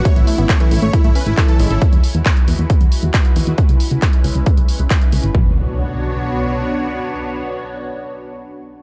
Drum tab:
HH |xxoxxxoxxxoxxxox|xxoxxxoxxxoxxxox|xxoxxxoxxxoxxxox|----------------|
CP |----x-------x---|----x-------x---|----x-------x---|----------------|
BD |o---o---o---o---|o---o---o---o---|o---o---o---o---|o---------------|

HH |----------------|
CP |----------------|
BD |----------------|